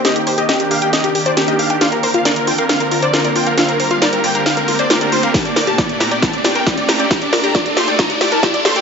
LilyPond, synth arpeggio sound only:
\new Staff \with { instrumentName = "Synth arpeggio sound" } { \time 4/4 \key g \minor \tempo 4 = 136 g'16 r16 c''16 g'16 ees''16 r16 g'16 g''16 r8 g'16 c''16 g'16 ees''16 g'16 g''16 | f'16 r16 c''16 f'16 d''16 r16 f'16 f''16 r8 f'16 c''16 f'16 d''16 f'16 f''16 | f'16 r16 c''16 f'16 d''16 r16 f'16 f''16 r8 f'16 c''16 f'16 d''16 f'16 f''16 | g'16 r16 bes'16 g'16 d''16 r16 g'16 g''16 r8 g'16 bes'16 g'16 d''16 g'16 g''16 |
g'16 r16 bes'16 g'16 d''16 r16 g'16 g''16 r8 g'16 bes'16 g'16 d''16 g'16 g''16 | }